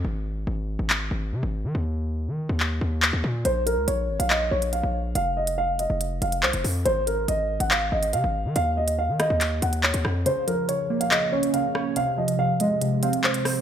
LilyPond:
<<
  \new Staff \with { instrumentName = "Grand piano" } { \time 4/4 \key bes \minor \tempo 4 = 141 r1 | r1 | c''8 bes'8 des''8. f''16 ees''8 des''8 f''4 | f''8 ees''8 f''8 ees''4 f''8 c''8 r8 |
c''8 bes'8 ees''8. ges''16 f''8 ees''8 f''4 | f''8 ees''8 f''8 ees''4 ges''8 des''8 r8 | c''8 bes'8 des''8. f''16 ees''8 des''8 f''4 | f''8 ees''8 f''8 ees''4 f''8 c''8 r8 | }
  \new Staff \with { instrumentName = "Synth keys" } { \clef bass \time 4/4 \key bes \minor r1 | r1 | r1 | r1 |
r1 | r1 | des8 f8 des8 bes8 des8 des'8 des8 des''8 | c8 f8 c8 aes8 c8 c'8 c8 c''8 | }
  \new Staff \with { instrumentName = "808-style bass" } { \clef bass \time 4/4 \key bes \minor aes,,4 aes,,8. aes,,8. aes,,8 c16 aes,,8 ees16 | ees,4~ ees,16 ees8 ees,8. ees,8. ees,16 bes,8 | bes,,8. des,16 bes,,8 aes,,16 bes,,8. bes,,8. bes,,8. | f,,4.~ f,,16 f,,8. f,,8 c,16 f,,16 f,8 |
aes,,4 aes,,8. aes,,8. aes,,8 c16 aes,,8 ees16 | ees,4~ ees,16 ees8 ees,8. ees,8. ees,16 f,8 | r1 | r1 | }
  \new DrumStaff \with { instrumentName = "Drums" } \drummode { \time 4/4 r4 r4 hc4 r4 | r4 r4 hc4 hc4 | hh8 hh8 hh8. hh16 hc8. hh16 hh4 | hh8. hh16 r8 hh8 hh8 hh16 hh16 hc16 hh16 hho8 |
hh8 hh8 hh8. hh16 hc8. hh16 hh4 | hh8. hh16 r8 <hh ss>8 <hc hh>8 hh16 hh16 hc16 hh16 ss8 | hh8 hh8 hh8. hh16 hc8. hh16 hh8 ss8 | hh8. hh16 r8 hh8 hh8 hh16 hh16 hc16 hh16 <hho ss>8 | }
>>